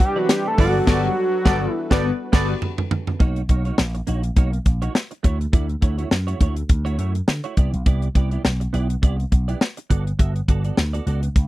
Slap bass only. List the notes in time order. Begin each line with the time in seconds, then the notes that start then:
0.58 G1
0.87 G1
1.46 G1
1.91 G1
2.33 G1
3.20 B1
3.49 B1
3.79 A#1
4.08 A#1
4.37 B1
4.66 A#1
5.24 D2
5.53 D2
5.82 D2
6.11 F#2
6.41 D2
6.70 D2
6.99 F#2
7.28 D3
7.57 C2
7.73 B1
7.86 C2
8.15 C2
8.45 B1
8.74 B1
9.03 C2
9.32 B1
9.91 G1
10.19 G1
10.48 G1
10.78 D2
11.06 C#2
11.36 C#2